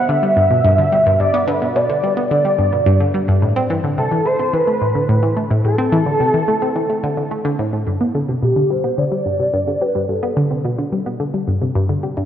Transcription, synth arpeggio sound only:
0.09 D3
0.23 G3
0.37 G2
0.50 B2
0.64 G2
0.78 D3
0.92 G3
1.06 G2
1.20 G2
1.34 B3
1.48 D3
1.62 B2
1.76 B2
1.89 D3
2.03 G3
2.17 B3
2.31 D3
2.45 G3
2.59 G2
2.73 B2
2.87 G2
3.00 D3
3.14 G3
3.28 G2
3.42 A2
3.56 C4
3.70 E3
3.84 D3
3.98 C3
4.12 E3
4.26 A3
4.39 C4
4.53 E3
4.67 A3
4.81 A2
4.95 D3
5.09 A2
5.23 E3
5.37 A3
5.50 A2
5.64 A2
5.78 C4
5.92 E3
6.06 D3
6.20 C3
6.34 E3
6.48 A3
6.62 C4
6.76 E3
6.90 A3
7.03 D3
7.17 D3
7.31 A3
7.45 D3
7.59 A2
7.73 A2
7.87 G2
8.01 B3
8.15 D3
8.29 C3
8.42 B2
8.56 D3
8.70 G3
8.84 B3
8.98 D3
9.12 G3
9.26 G2
9.40 C3
9.53 G2
9.67 D3
9.81 G3
9.95 G2
10.09 G2
10.23 B3
10.37 D3
10.51 C3
10.65 B2
10.79 D3
10.92 G3
11.06 B3
11.20 D3
11.34 G3
11.48 G2
11.62 C3
11.76 G2
11.90 D3
12.03 G3
12.17 G2

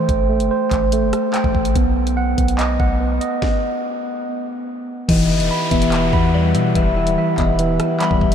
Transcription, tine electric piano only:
Already playing: A3 C5 G5
0.29 A3
0.51 C5
0.93 A3
1.34 G5
1.76 B3
2.17 F#5
2.37 B3
2.59 D#5
2.80 F#5
3.00 B3
3.21 D#5
5.09 E3
5.51 B5
5.71 E3
5.92 E5
6.13 B5
6.34 E3
6.55 E5
6.96 E3
7.18 E5
7.59 E3
8.00 B5

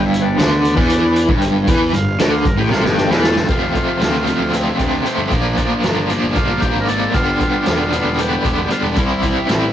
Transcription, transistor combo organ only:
0.06 E4
0.22 B3 D4
1.90 E5
1.95 F5
2.20 D5
2.33 F5
2.47 A#4
2.59 G4
2.73 F4
2.85 G4
2.96 D4 G4
3.11 A#3
3.23 F3 A3 A4
3.49 F4
4.01 F4
4.51 E4
4.78 D4
4.99 D4
5.06 C4
5.30 D4
6.35 F4
6.60 G4
6.81 A#4
6.87 A4
7.14 F4
7.40 F4
7.67 F4
8.19 G4
8.45 E4
8.65 G4
8.71 F4
8.98 E4

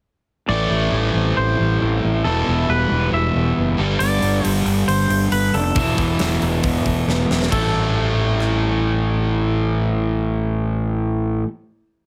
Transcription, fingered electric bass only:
0.48 A1
0.70 A1
0.92 A1
1.14 A1
1.37 A1
1.60 A1
1.82 A1
2.04 A1
2.25 E1
2.48 E1
2.68 E1
2.91 E1
3.12 E1
3.35 E1
3.57 F#1
3.79 G1
4.00 G1
4.22 G1
4.45 G1
4.65 G1
4.88 G1
5.09 G1
5.32 G1
5.54 F1
5.76 E1
5.98 E1
6.20 E1
6.42 E1
6.64 E1
6.86 E1
7.08 E1
7.30 E1
7.52 A1

